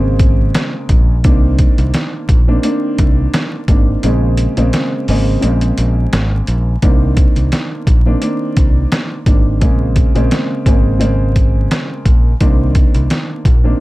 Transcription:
Already playing: fingered electric bass G#1, grand piano C#3 G#3 A#3 C4
0.19 kick, closed hi-hat
0.55 snare, closed hi-hat
0.89 fingered electric bass A#1, kick, closed hi-hat
1.24 fingered electric bass C2, grand piano D#3 A#3 C4 D4, kick, closed hi-hat
1.59 kick, closed hi-hat
1.78 fingered electric bass C2, closed hi-hat
1.94 snare, closed hi-hat
2.29 fingered electric bass A#1, kick, closed hi-hat
2.48 grand piano D#3 A#3 C4 D4
2.63 grand piano D#3 A#3 C4 D4, closed hi-hat
2.98 fingered electric bass C2, kick, closed hi-hat
3.34 snare, closed hi-hat
3.68 fingered electric bass G#1, grand piano D#3 A#3 C4 D4, kick, closed hi-hat
4.03 fingered electric bass A#1, grand piano C#3 G#3 A#3 C4, closed hi-hat
4.37 closed hi-hat
4.57 fingered electric bass A#1, grand piano C#3 G#3 A#3 C4, closed hi-hat
4.73 snare, closed hi-hat
5.08 fingered electric bass G#1, grand piano C#3 G#3 A#3 C4, open hi-hat
5.41 fingered electric bass A#1, grand piano C#3 G#3 A#3 C4, closed hi-hat
5.61 closed hi-hat
5.78 fingered electric bass A#1, closed hi-hat
6.13 fingered electric bass G#1, snare, closed hi-hat
6.47 fingered electric bass A#1, closed hi-hat
6.82 fingered electric bass C2, grand piano D#3 A#3 C4 D4, kick, closed hi-hat
7.17 kick, closed hi-hat
7.36 fingered electric bass C2, closed hi-hat
7.52 snare, closed hi-hat
7.87 fingered electric bass A#1, kick, closed hi-hat
8.06 grand piano D#3 A#3 C4 D4
8.21 grand piano D#3 A#3 C4 D4, closed hi-hat
8.57 fingered electric bass C2, kick, closed hi-hat
8.92 snare, closed hi-hat
9.26 fingered electric bass G#1, grand piano D#3 A#3 C4 D4, kick, closed hi-hat
9.61 fingered electric bass A#1, grand piano C#3 G#3 A#3 C4, kick, closed hi-hat
9.96 kick, closed hi-hat
10.15 fingered electric bass A#1, grand piano C#3 G#3 A#3 C4, closed hi-hat
10.31 snare, closed hi-hat
10.66 fingered electric bass G#1, grand piano C#3 G#3 A#3 C4, kick, closed hi-hat
10.99 grand piano C#3 G#3 A#3 C4, closed hi-hat
11.36 kick, closed hi-hat
11.71 snare, closed hi-hat
12.05 fingered electric bass A#1, kick, closed hi-hat
12.40 fingered electric bass C2, grand piano D#3 A#3 C4 D4, kick, closed hi-hat
12.75 kick, closed hi-hat
12.95 fingered electric bass C2, closed hi-hat
13.10 snare, closed hi-hat
13.45 fingered electric bass A#1, kick, closed hi-hat
13.64 grand piano D#3 A#3 C4 D4

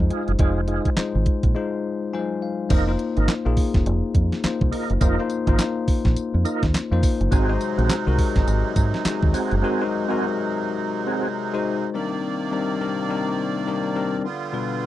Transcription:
Already playing: tine electric piano G#3 D#4 F4 G#4 C5
0.10 tonewheel organ D#4 F4 G#4, closed hi-hat
0.28 fingered electric bass F#1, closed hi-hat
0.39 fingered electric bass F1, tine electric piano G#3 D#4 F4 C5, tonewheel organ D#4 F4 G#4, kick, closed hi-hat
0.68 tonewheel organ D#4 F4 G#4, closed hi-hat
0.85 kick, closed hi-hat
0.97 tine electric piano G#3 D#4 F4 C5, muted fingered electric bass stroke, snare, clap, closed hi-hat
1.15 fingered electric bass G#1
1.26 kick, closed hi-hat
1.43 fingered electric bass A#1, kick, closed hi-hat
1.55 tine electric piano G#3 D#4 F4 C5
2.13 tine electric piano F#3 D#4 F4 C5 G#5
2.19 tine electric piano G#3
2.42 tine electric piano F5
2.69 fingered electric bass F1, tine electric piano A#3 D#4 F4 C5, tonewheel organ D#4 F4 A#4, kick, closed hi-hat, crash
2.88 tine electric piano A#3 D#4 F4 C5
2.99 closed hi-hat
3.17 fingered electric bass G#1, tonewheel organ D#4 F4 A#4, closed hi-hat
3.28 snare, clap, closed hi-hat
3.45 fingered electric bass A#1, tine electric piano A#3 D#4 F4 G#4
3.57 kick, open hi-hat
3.74 fingered electric bass F1, kick, snare, closed hi-hat
3.86 fingered electric bass F1, closed hi-hat
4.15 fingered electric bass F2, kick, closed hi-hat
4.32 snare, closed hi-hat
4.44 tine electric piano A#3 D#4 F4 C5, muted fingered electric bass stroke, snare, clap, closed hi-hat
4.61 fingered electric bass C2, kick
4.72 tonewheel organ D#4 F4 A#4, open hi-hat
4.90 fingered electric bass F#1, closed hi-hat
5.01 fingered electric bass F1, tine electric piano A#3 D#4 F4 C5, tonewheel organ D#4 F4 A#4, kick, closed hi-hat, tambourine
5.19 tine electric piano A#3 D#4 F4 C5
5.30 closed hi-hat, tambourine
5.47 fingered electric bass G#1, tine electric piano A#3 D#4 F4 C5, tonewheel organ D#4 F4 A#4, kick, closed hi-hat
5.59 snare, clap, closed hi-hat, tambourine
5.88 muted fingered electric bass stroke, kick, open hi-hat
6.05 fingered electric bass A#1, kick, snare, closed hi-hat
6.16 muted fingered electric bass stroke, closed hi-hat, tambourine
6.34 fingered electric bass F2
6.45 tonewheel organ D#4 F4 A#4, closed hi-hat, tambourine
6.63 fingered electric bass D#2, kick, snare, closed hi-hat
6.74 snare, clap, closed hi-hat, tambourine
6.91 fingered electric bass F2, tine electric piano A#3 D#4 F4 C5
7.03 kick, open hi-hat, tambourine
7.21 fingered electric bass F#1, closed hi-hat
7.31 fingered electric bass G#1, accordion C3 F#3 G#3 D#4, tine electric piano G#3 D#4 F#4 C5, tonewheel organ C4 F#4 G#4, kick, closed hi-hat, tambourine
7.49 tine electric piano G#3 D#4 F#4 C5
7.61 closed hi-hat, tambourine
7.78 fingered electric bass A#1, tonewheel organ C4 F#4 G#4, closed hi-hat
7.89 snare, clap, closed hi-hat, tambourine
8.06 fingered electric bass C2, tine electric piano G#3 D#4 F#4 A#4
8.18 kick, open hi-hat
8.36 fingered electric bass G#1, kick, snare, closed hi-hat
8.47 fingered electric bass G#1, closed hi-hat, tambourine
8.76 fingered electric bass G#2, kick, closed hi-hat, tambourine
8.94 snare, closed hi-hat
9.05 tine electric piano G#3 D#4 F#4 G#4, muted fingered electric bass stroke, snare, clap, closed hi-hat, tambourine
9.23 fingered electric bass D#2, kick
9.33 tonewheel organ C4 F#4 G#4, open hi-hat, tambourine
9.51 fingered electric bass F#1, closed hi-hat
9.62 tine electric piano G#3 D#4 F#4 A#4, tonewheel organ C4 F#4 G#4
9.81 tine electric piano G#3 D#4 F#4 C5
10.09 tine electric piano G#3 D#4 F#4 A#4, tonewheel organ C4 F#4 G#4
11.07 tonewheel organ C4 F#4 G#4
11.53 tine electric piano G#3 D#4 F#4 C5
11.93 accordion C3 D#3 A#3 D5, tine electric piano G3 C4 D4 D#4 A#4
12.51 tine electric piano G3 C4 D4 D#4 A#4
12.80 tine electric piano G3 C4 D4 D#4 A#4
13.09 tine electric piano G3 C4 D4 D#4 A#4
13.67 tine electric piano G3 C4 D4 D#4 A#4
13.95 tine electric piano G3 C4 D4 D#4 A#4
14.24 accordion D3 G3 B3 F4
14.53 tine electric piano B2 G3 B3 D4 F4 B4

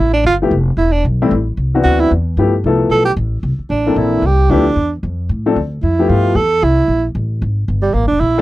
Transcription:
Already playing: tenor saxophone E4
0.00 upright bass A1
0.13 tenor saxophone D4
0.25 upright bass G1, tenor saxophone F4
0.42 upright piano F3 A3 B3 E4 G4
0.51 upright bass F1
0.77 upright bass E1, tenor saxophone E4
0.92 tenor saxophone D4
1.04 upright bass B1
1.22 upright piano E3 G3 A3 C4 E4
1.31 upright bass A1
1.57 upright bass C2
1.74 upright piano E3 B3 C4 D4 F#4
1.84 upright bass D2, tenor saxophone F#4
2.00 tenor saxophone E4
2.11 upright bass E2
2.37 upright bass G2, upright piano F3 A3 B3 E4 G4
2.64 upright bass C2, upright piano F3 A3 B3 E4 A4
2.90 upright bass B1, tenor saxophone A4
3.05 tenor saxophone G4
3.16 upright bass A1
3.43 upright bass C2
3.58 muted upright bass stroke
3.70 upright bass A1, tenor saxophone D4
3.86 upright piano E3 A#3 C4 D4 A4
3.96 upright bass A#1, tenor saxophone E4
4.22 upright bass C2
4.26 tenor saxophone G4
4.50 upright bass D2, upright piano F3 A3 B3 E4 G4, tenor saxophone D4
4.76 upright bass E2
5.03 upright bass F2
5.29 upright bass A2
5.46 upright piano F3 A3 C4 D4 A4
5.56 upright bass D2
5.83 upright bass F2, tenor saxophone E4
5.99 upright piano F3 A3 B3 E4 G4
6.09 upright bass G2, tenor saxophone F4
6.35 upright bass E2, tenor saxophone A4
6.62 upright bass C2, tenor saxophone E4
6.88 upright bass A#1
7.15 upright bass A1
7.42 upright bass G#1
7.68 upright bass G1
7.82 tenor saxophone G3
7.94 upright bass A1, tenor saxophone A#3
8.03 upright bass G1
8.08 upright bass E1, tenor saxophone D4
8.20 upright bass A#1, tenor saxophone E4
8.38 upright piano E3 A#3 C4 D4

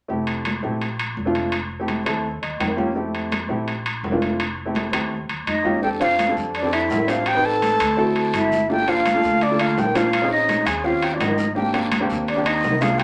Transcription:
0.08 upright bass F1, grand piano A3 C4 E4 G4, high conga
0.27 high conga, high timbale
0.45 high conga, high timbale
0.62 upright bass A#1, grand piano A3 C4 E4 G4, high conga
0.81 high conga, high timbale
0.99 high conga, high timbale
1.17 upright bass F1, high conga
1.25 grand piano A3 C4 D4 F4
1.35 high conga, high timbale
1.52 high conga, high timbale
1.71 high conga
1.79 grand piano A3 C4 E4 G4
1.88 high conga, high timbale
2.05 upright bass D#2, grand piano A3 C4 E4 A4, high timbale
2.24 high conga
2.42 upright bass D#2, grand piano D#5, high conga, high timbale
2.60 upright bass F2, grand piano G5, high conga, high timbale, low timbale
2.77 grand piano A#3 C#4 F4 G4, high conga
2.95 grand piano A3 C4 E4 G4, high conga
3.15 high conga, high timbale
3.32 high conga, high timbale
3.49 upright bass A#1, grand piano A3 C4 E4 G4, high conga
3.68 high conga, high timbale
3.86 high conga, high timbale
4.03 upright bass F1, high conga, low timbale
4.11 grand piano A3 C4 D4 F4
4.21 high conga, high timbale
4.39 high conga, high timbale
4.58 high conga
4.65 grand piano A3 C4 E4 G4
4.75 high conga, high timbale
4.92 upright bass D#2, grand piano A3 C4 E4 G4, high timbale
5.11 high conga
5.29 upright bass D#2, high conga, high timbale
5.47 upright bass F2, flute D#4 D#5, high conga, high timbale
5.64 grand piano A#3 C#4 F4 G4, high conga
5.82 grand piano C4 D4 G4 A4, flute G4 G5, high conga, long guiro
6.00 grand piano C4 D4 G4 C5, flute F4 F5, high conga, high timbale
6.19 high conga, high timbale, short guiro
6.28 grand piano C4 D4 G4 A4
6.37 upright bass F2, high conga, short guiro
6.54 flute D4 D5, high conga, high timbale, long guiro
6.63 grand piano C4 D4 G4 A4
6.73 flute E4 E5, high conga, high timbale
6.90 upright bass A1, high conga, low timbale, short guiro
7.08 grand piano C4 D4 G4 C5, flute F4 F5, high timbale, short guiro
7.26 flute G4 G5, high conga, high timbale, long guiro
7.35 grand piano C4 D#4 G4 B4
7.45 flute A4 A5, high conga
7.62 high conga, high timbale, short guiro
7.80 upright bass D2, high conga, high timbale, short guiro
7.97 grand piano C4 E4 F#4 A4, high conga, long guiro
8.16 high conga, high timbale
8.34 upright bass G1, flute E4 E5, high conga, high timbale, short guiro
8.52 high conga, short guiro
8.69 grand piano A#3 D4 F4 A4, flute G4 G5, high conga, long guiro
8.86 grand piano A#3 D4 F4 C5, flute F4 F5, high conga, high timbale
9.05 high conga, high timbale, short guiro
9.14 grand piano A#3 D4 F4 A4
9.24 upright bass D2, high conga, short guiro
9.41 flute D4 D5, high conga, high timbale, long guiro
9.50 grand piano A#3 D4 F4 A4
9.59 flute F4 F5, high timbale
9.77 upright bass A#1, flute G4 G5, high conga, low timbale, short guiro
9.94 grand piano A#3 D4 F4 C5, flute F4 F5, high conga, high timbale, short guiro
10.13 high conga, high timbale, long guiro
10.22 grand piano C4 C#4 D#4 G#4
10.31 flute D#4 D#5, high conga
10.48 high conga, high timbale, short guiro
10.66 upright bass D#2, flute G#4 G#5, high timbale, short guiro
10.84 grand piano C4 C#4 F4 G4, flute F4 F5, high conga, long guiro
11.02 flute G4 G5, high conga, high timbale
11.14 flute D4 D5
11.20 upright bass G#1, flute D#4 D#5, high conga, high timbale, low timbale, short guiro
11.38 high conga, short guiro
11.55 grand piano A#3 C4 D4 G4, flute G4 G5, high conga, long guiro
11.73 grand piano A#3 C4 D4 G4, high conga, high timbale
11.92 high conga, high timbale, short guiro
12.00 grand piano A#3 C4 D4 G4
12.10 upright bass D#2, high conga, short guiro
12.28 flute D4 D5, high conga, high timbale, long guiro
12.36 grand piano A#3 C4 D4 G4, flute D4 D5
12.46 flute D#4 D#5, high conga, high timbale
12.63 upright bass C2, high conga, low timbale, short guiro
12.81 grand piano A#3 C4 D4 G#4, flute F4 F5, high conga, high timbale, short guiro
12.98 flute G4 G5, high conga, high timbale, long guiro

